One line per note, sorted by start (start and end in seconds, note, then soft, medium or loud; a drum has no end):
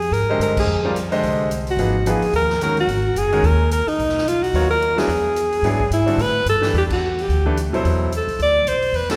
0.00 0.14 G#4 loud
0.00 open hi-hat soft
0.11 0.38 G#2 medium
0.11 0.40 A#4 loud
0.11 open hi-hat soft
0.29 0.66 D3 medium
0.29 0.66 G#3 medium
0.29 0.66 G4 medium
0.29 0.66 C5 medium
0.29 0.66 D#5 medium
0.39 0.65 G2 medium
0.39 0.56 A#4 loud
0.39 closed hi-hat medium
0.57 0.94 G#4 medium
0.57 kick medium
0.57 crash medium
0.67 1.19 F2 medium
0.84 0.94 G3 medium
0.84 0.94 C4 medium
0.84 0.95 F4 medium
0.84 0.95 A#4 medium
0.84 0.95 D5 medium
0.96 closed hi-hat medium
1.11 1.48 D3 medium
1.11 1.48 G#3 medium
1.11 1.48 G4 medium
1.11 1.48 C5 medium
1.11 1.49 D#5 medium
1.11 open hi-hat soft
1.23 1.75 C2 medium
1.23 open hi-hat soft
1.51 closed hi-hat medium
1.67 2.12 F#4 medium
1.67 open hi-hat soft
1.77 2.18 G#1 medium
1.77 1.93 F3 medium
1.77 1.93 A#3 medium
1.77 1.93 D#4 medium
1.77 1.93 G#4 medium
1.77 1.94 B4 medium
1.77 open hi-hat medium
2.06 2.21 F3 medium
2.06 2.21 A#3 medium
2.06 2.21 D#4 medium
2.06 2.21 G#4 medium
2.06 2.21 B4 medium
2.06 closed hi-hat medium
2.10 2.35 G#4 loud
2.21 muted upright bass stroke soft
2.21 open hi-hat soft
2.33 2.85 D#2 medium
2.33 2.60 A#4 loud
2.33 open hi-hat soft
2.50 snare soft
2.61 2.76 D#3 medium
2.61 2.76 G#3 medium
2.61 2.76 C#4 medium
2.61 2.76 F#4 medium
2.61 2.77 A#4 medium
2.61 2.77 A#4 loud
2.61 closed hi-hat medium
2.77 3.19 F#4 loud
2.77 open hi-hat soft
2.87 3.13 G#1 medium
2.87 open hi-hat soft
3.16 3.41 F#1 medium
3.16 3.47 G#4 loud
3.16 closed hi-hat medium
3.32 3.42 D#3 medium
3.32 3.42 G#3 medium
3.32 3.43 C#4 medium
3.32 3.43 F#4 medium
3.32 3.43 A#4 medium
3.32 open hi-hat soft
3.43 3.84 D#2 medium
3.43 3.72 A#4 loud
3.43 open hi-hat soft
3.71 3.89 A#4 medium
3.71 closed hi-hat medium
3.87 4.29 D#4 medium
3.87 muted upright bass stroke soft
3.87 open hi-hat soft
3.99 4.51 B1 medium
3.99 open hi-hat soft
4.09 snare soft
4.18 snare soft
4.28 4.44 F4 medium
4.28 closed hi-hat medium
4.43 4.70 F#4 loud
4.43 open hi-hat soft
4.53 5.06 D#2 medium
4.53 4.68 F#3 medium
4.53 4.69 B3 medium
4.53 4.69 F4 medium
4.53 4.69 A#4 medium
4.53 4.69 C#5 medium
4.53 open hi-hat soft
4.71 5.00 A#4 loud
4.82 closed hi-hat medium
4.96 5.07 F#3 medium
4.96 5.07 B3 medium
4.96 5.07 D4 medium
4.96 5.08 E4 medium
4.96 5.08 F#4 medium
4.96 5.92 G#4 medium
4.96 snare medium
4.96 open hi-hat soft
5.08 5.61 E2 medium
5.08 open hi-hat soft
5.36 closed hi-hat medium
5.52 open hi-hat soft
5.62 5.88 G#2 medium
5.62 5.79 F#3 medium
5.62 5.79 B3 medium
5.62 5.79 D4 medium
5.62 5.79 E4 medium
5.62 5.79 G#4 medium
5.62 open hi-hat soft
5.80 kick medium
5.91 6.16 G#2 medium
5.91 6.23 E4 medium
5.91 closed hi-hat medium
6.06 6.17 D3 medium
6.06 6.17 G3 medium
6.06 6.17 C4 medium
6.06 6.17 F#4 medium
6.06 6.17 A4 medium
6.06 open hi-hat soft
6.18 6.44 A2 medium
6.18 6.47 B4 loud
6.18 open hi-hat soft
6.46 6.71 G2 medium
6.46 6.73 A4 loud
6.46 closed hi-hat medium
6.61 6.98 E3 medium
6.61 6.98 A3 medium
6.61 6.99 D4 medium
6.61 6.99 G4 medium
6.61 6.99 B4 medium
6.61 snare medium
6.61 open hi-hat soft
6.73 7.26 E2 medium
6.73 open hi-hat soft
6.78 6.84 G4 medium
6.90 7.23 F#4 medium
6.90 kick medium
6.90 crash medium
7.19 7.58 G4 medium
7.19 open hi-hat soft
7.29 7.70 D2 medium
7.29 open hi-hat soft
7.46 7.55 E3 medium
7.46 7.55 A3 medium
7.46 7.56 D4 medium
7.46 7.56 G4 medium
7.46 7.56 B4 medium
7.57 closed hi-hat medium
7.73 7.83 B1 medium
7.73 8.09 B2 medium
7.73 8.09 F#3 medium
7.73 8.10 E4 medium
7.73 8.10 A4 medium
7.73 8.10 C5 medium
7.73 open hi-hat soft
7.85 8.25 E2 medium
7.85 open hi-hat soft
8.12 closed hi-hat medium
8.17 8.40 A4 medium
8.28 8.38 B1 medium
8.28 open hi-hat soft
8.39 8.64 D2 medium
8.39 8.70 D5 loud
8.39 open hi-hat soft
8.65 8.91 B1 medium
8.65 8.97 C5 loud
8.65 closed hi-hat medium
8.82 open hi-hat soft
8.93 9.16 E2 medium
8.93 9.10 B4 medium
8.93 open hi-hat soft
9.09 9.16 D3 medium
9.09 9.16 G3 medium
9.09 9.16 C4 medium
9.09 9.16 F#4 medium
9.09 9.16 A4 medium
9.09 snare medium
9.09 ride medium